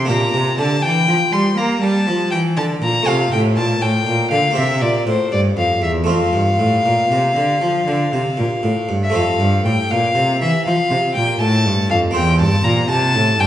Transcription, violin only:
0, 0, Header, 1, 2, 480
1, 0, Start_track
1, 0, Key_signature, -1, "major"
1, 0, Tempo, 495868
1, 99, Time_signature, 12, 3, 24, 8
1, 4419, Tempo, 509338
1, 9699, Tempo, 496689
1, 12889, End_track
2, 0, Start_track
2, 0, Title_t, "Violin"
2, 0, Program_c, 0, 40
2, 89, Note_on_c, 0, 82, 80
2, 558, Note_off_c, 0, 82, 0
2, 564, Note_on_c, 0, 81, 82
2, 796, Note_on_c, 0, 79, 93
2, 811, Note_off_c, 0, 81, 0
2, 1283, Note_on_c, 0, 84, 79
2, 1297, Note_off_c, 0, 79, 0
2, 1522, Note_on_c, 0, 82, 71
2, 1536, Note_off_c, 0, 84, 0
2, 1761, Note_on_c, 0, 81, 86
2, 1775, Note_off_c, 0, 82, 0
2, 2233, Note_off_c, 0, 81, 0
2, 2239, Note_on_c, 0, 79, 75
2, 2316, Note_off_c, 0, 79, 0
2, 2485, Note_on_c, 0, 81, 75
2, 2563, Note_off_c, 0, 81, 0
2, 2739, Note_on_c, 0, 82, 78
2, 2979, Note_on_c, 0, 77, 76
2, 2993, Note_off_c, 0, 82, 0
2, 3212, Note_off_c, 0, 77, 0
2, 3218, Note_on_c, 0, 79, 72
2, 3295, Note_off_c, 0, 79, 0
2, 3452, Note_on_c, 0, 81, 84
2, 3696, Note_on_c, 0, 79, 84
2, 3710, Note_off_c, 0, 81, 0
2, 4163, Note_off_c, 0, 79, 0
2, 4169, Note_on_c, 0, 77, 73
2, 4410, Note_off_c, 0, 77, 0
2, 4422, Note_on_c, 0, 76, 73
2, 4655, Note_on_c, 0, 74, 65
2, 4669, Note_off_c, 0, 76, 0
2, 4894, Note_off_c, 0, 74, 0
2, 4901, Note_on_c, 0, 72, 68
2, 5124, Note_off_c, 0, 72, 0
2, 5130, Note_on_c, 0, 74, 67
2, 5205, Note_off_c, 0, 74, 0
2, 5368, Note_on_c, 0, 77, 72
2, 5603, Note_off_c, 0, 77, 0
2, 5610, Note_on_c, 0, 76, 71
2, 5685, Note_off_c, 0, 76, 0
2, 5860, Note_on_c, 0, 77, 75
2, 8472, Note_off_c, 0, 77, 0
2, 8631, Note_on_c, 0, 76, 66
2, 8743, Note_on_c, 0, 77, 68
2, 8757, Note_off_c, 0, 76, 0
2, 9214, Note_off_c, 0, 77, 0
2, 9219, Note_on_c, 0, 79, 70
2, 9454, Note_on_c, 0, 77, 80
2, 9469, Note_off_c, 0, 79, 0
2, 9933, Note_off_c, 0, 77, 0
2, 9939, Note_on_c, 0, 76, 75
2, 10164, Note_off_c, 0, 76, 0
2, 10170, Note_on_c, 0, 77, 80
2, 10638, Note_off_c, 0, 77, 0
2, 10644, Note_on_c, 0, 79, 81
2, 10889, Note_off_c, 0, 79, 0
2, 10901, Note_on_c, 0, 81, 93
2, 11371, Note_off_c, 0, 81, 0
2, 11381, Note_on_c, 0, 77, 73
2, 11458, Note_off_c, 0, 77, 0
2, 11624, Note_on_c, 0, 79, 78
2, 11850, Note_off_c, 0, 79, 0
2, 11856, Note_on_c, 0, 81, 84
2, 12090, Note_on_c, 0, 82, 81
2, 12105, Note_off_c, 0, 81, 0
2, 12333, Note_off_c, 0, 82, 0
2, 12339, Note_on_c, 0, 81, 97
2, 12824, Note_on_c, 0, 79, 82
2, 12838, Note_off_c, 0, 81, 0
2, 12889, Note_off_c, 0, 79, 0
2, 12889, End_track
0, 0, End_of_file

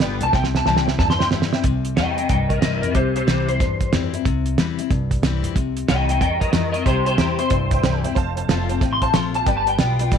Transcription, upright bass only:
0, 0, Header, 1, 2, 480
1, 0, Start_track
1, 0, Key_signature, 0, "major"
1, 0, Tempo, 326264
1, 494, Time_signature, 4, 2, 24, 8
1, 14978, End_track
2, 0, Start_track
2, 0, Title_t, "Upright bass"
2, 0, Program_c, 0, 32
2, 9, Note_on_c, 0, 31, 88
2, 282, Note_off_c, 0, 31, 0
2, 304, Note_on_c, 0, 36, 90
2, 469, Note_off_c, 0, 36, 0
2, 489, Note_on_c, 0, 36, 98
2, 922, Note_off_c, 0, 36, 0
2, 974, Note_on_c, 0, 36, 90
2, 1405, Note_off_c, 0, 36, 0
2, 1453, Note_on_c, 0, 40, 94
2, 1884, Note_off_c, 0, 40, 0
2, 1938, Note_on_c, 0, 41, 85
2, 2367, Note_off_c, 0, 41, 0
2, 2412, Note_on_c, 0, 36, 93
2, 2844, Note_off_c, 0, 36, 0
2, 2907, Note_on_c, 0, 40, 92
2, 3332, Note_off_c, 0, 40, 0
2, 3378, Note_on_c, 0, 36, 96
2, 3807, Note_off_c, 0, 36, 0
2, 3864, Note_on_c, 0, 36, 89
2, 4131, Note_off_c, 0, 36, 0
2, 4164, Note_on_c, 0, 41, 86
2, 4321, Note_off_c, 0, 41, 0
2, 4334, Note_on_c, 0, 36, 94
2, 4765, Note_off_c, 0, 36, 0
2, 4813, Note_on_c, 0, 36, 100
2, 5244, Note_off_c, 0, 36, 0
2, 5299, Note_on_c, 0, 40, 97
2, 5728, Note_off_c, 0, 40, 0
2, 5778, Note_on_c, 0, 41, 90
2, 6207, Note_off_c, 0, 41, 0
2, 6255, Note_on_c, 0, 36, 80
2, 6685, Note_off_c, 0, 36, 0
2, 6735, Note_on_c, 0, 40, 84
2, 7165, Note_off_c, 0, 40, 0
2, 7217, Note_on_c, 0, 36, 93
2, 7646, Note_off_c, 0, 36, 0
2, 7687, Note_on_c, 0, 36, 84
2, 7961, Note_off_c, 0, 36, 0
2, 7987, Note_on_c, 0, 41, 91
2, 8151, Note_off_c, 0, 41, 0
2, 8170, Note_on_c, 0, 36, 86
2, 8602, Note_off_c, 0, 36, 0
2, 8664, Note_on_c, 0, 36, 100
2, 9089, Note_off_c, 0, 36, 0
2, 9136, Note_on_c, 0, 40, 95
2, 9565, Note_off_c, 0, 40, 0
2, 9608, Note_on_c, 0, 41, 88
2, 10040, Note_off_c, 0, 41, 0
2, 10089, Note_on_c, 0, 36, 89
2, 10521, Note_off_c, 0, 36, 0
2, 10559, Note_on_c, 0, 40, 94
2, 10995, Note_off_c, 0, 40, 0
2, 11043, Note_on_c, 0, 36, 97
2, 11477, Note_off_c, 0, 36, 0
2, 11520, Note_on_c, 0, 36, 91
2, 11796, Note_off_c, 0, 36, 0
2, 11812, Note_on_c, 0, 40, 76
2, 11981, Note_off_c, 0, 40, 0
2, 12008, Note_on_c, 0, 29, 89
2, 12439, Note_off_c, 0, 29, 0
2, 12480, Note_on_c, 0, 29, 93
2, 12915, Note_off_c, 0, 29, 0
2, 12964, Note_on_c, 0, 33, 98
2, 13397, Note_off_c, 0, 33, 0
2, 13443, Note_on_c, 0, 34, 83
2, 13876, Note_off_c, 0, 34, 0
2, 13923, Note_on_c, 0, 31, 80
2, 14356, Note_off_c, 0, 31, 0
2, 14407, Note_on_c, 0, 35, 92
2, 14838, Note_off_c, 0, 35, 0
2, 14884, Note_on_c, 0, 31, 91
2, 14978, Note_off_c, 0, 31, 0
2, 14978, End_track
0, 0, End_of_file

